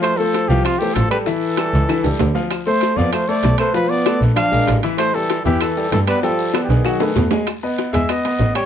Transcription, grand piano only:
\new Staff \with { instrumentName = "Grand piano" } { \time 4/4 \key a \minor \tempo 4 = 194 <f f' f''>8 <a a' c''>4 <f f' f''>4 <a a' c''>4 <g g' a'>8 | <e e' e''>4 <g g' a'>4 <e e' e''>8 <g g' a'>4 <f f' f''>8~ | <f f' f''>8 <a a' c''>4 <f f' f''>4 <a a' c''>4 <a a' b'>8 | <f f' f''>4 <a a' b'>4 <f f' f''>8 <aes aes' bes'>4 <e e' e''>8~ |
<e e' e''>8 <g g' a'>4 <e e' e''>4 <g g' a'>4 <b b' d''>8 | <g g' g''>4 <b b' d''>4 <fis fis' fis''>8 <a a' b'>4 <gis gis' gis''>8 | \key e \major r8 <b b' dis''>4 <gis gis' gis''>8 <b b' dis''>8 <b b' dis''>4 <g g' g''>8 | }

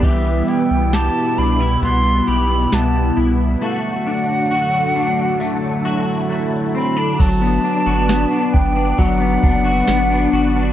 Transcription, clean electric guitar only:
\new Staff \with { instrumentName = "Clean electric guitar" } { \time 4/4 \key g \major \tempo 4 = 67 <e g'>8 e'8 g'8 d'16 e'16 b8 g'8 b8 e'8 | <a fis'>8 d'8 fis'8 d'8 a8 fis'8 a8 c'16 d'16 | fis16 b16 d'16 fis'16 b16 d'8 d'16 fis16 b16 d'16 fis'16 b16 d'16 fis'16 d'16 | }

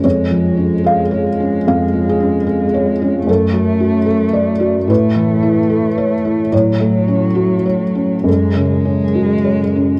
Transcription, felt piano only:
\new Staff \with { instrumentName = "Felt piano" } { \time 4/4 \key fis \minor \tempo 4 = 74 << { cis''4 eis''4 eis''8 gis'4. | a'2 b'2 | cis''2 a'4. r8 | } \\ { \tuplet 3/2 { eis,8 eis8 cis'8 gis'8 cis''8 cis'8 eis,8 eis8 cis'8 gis'8 cis''8 cis'8 } | \tuplet 3/2 { fis,8 fis8 fis'8 a'8 d''8 fis'8 a,8 e8 e'8 a'8 cis''8 e'8 } | \tuplet 3/2 { a,8 a8 cis'8 fis'8 cis''8 cis'8 fis,8 cis8 cis'8 fis'8 cis''8 cis'8 } | } >> }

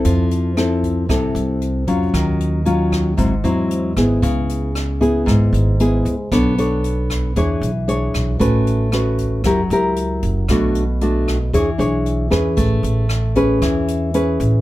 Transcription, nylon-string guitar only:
\new Staff \with { instrumentName = "Nylon-string guitar" } { \time 4/4 \key a \major \tempo 4 = 115 << { <c' e' a'>4 <c' e' a'>4 <c' e' a'>4. <fis cis' f'>8~ | <fis cis' f'>4 <fis cis' eis'>4 <fis bis e'>8 <fis bis e'>4 <b e' gis'>8~ | <b e' gis'>4 r8 <b e' gis'>4. <b e' gis'>8 r8 | <d' a' cis''>8 <d' a' cis''>4. <d' gis' cis''>8 r8 <d' gis' cis''>4 |
<cis' fis' b'>4 <cis' fis' b'>4 <e' g' ais'>8 <e' g' ais'>4. | <a d' fis'>8 r8 <a d' fis'>8 r8 <d' gis' cis''>8 <d' gis' cis''>4 <cis' gis' b'>8~ | <cis' gis' b'>4 r8 <cis' gis' b'>4. <cis' gis' b'>4 | } \\ { f2 c2 | dis2 gis,2 | cis2 gis,2 | b2 e2 |
a2 fis2 | b,2 e2 | a2 e2 | } >> }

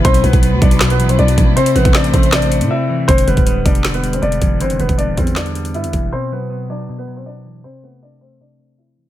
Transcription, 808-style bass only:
\new Staff \with { instrumentName = "808-style bass" } { \clef bass \time 4/4 \key e \minor \tempo 4 = 158 b,,8 b,,16 b,,8 d,16 b,,4 a,,16 b,,16 b,,8 a,,8 | r8 a,,16 a,,8. a,,4~ a,,16 a,16 r4 | e,,8 e,,16 d,,8. e,,4. e,,8 e,,8 | g,,16 e,,16 e,,16 e,,8 d,,16 e,4. g,16 e,16 e,,8 |
r1 | r1 | }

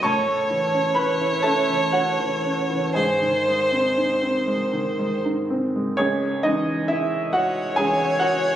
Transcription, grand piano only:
<<
  \new Staff \with { instrumentName = "Grand piano" } { \time 6/8 \key cis \minor \tempo 4. = 41 <cis'' a'' cis'''>4 <b' b''>8 <a' e'' a''>8 <fis' cis'' fis''>4 | <gis' dis'' gis''>4. r4. | <cis' gis' cis''>8 <dis' dis''>8 <e' e''>8 <fis' fis''>8 <gis' gis''>8 <fis' fis''>8 | }
  \new Staff \with { instrumentName = "Grand piano" } { \clef bass \time 6/8 \key cis \minor a,16 a16 e16 cis'16 e16 e'16 cis'16 e16 cis'16 e16 cis'16 e16 | gis,16 dis16 gis16 bis16 dis'16 bis16 gis16 dis16 gis16 dis'16 bis16 gis16 | cis,8 <e gis cis'>4. <e gis cis'>4 | }
>>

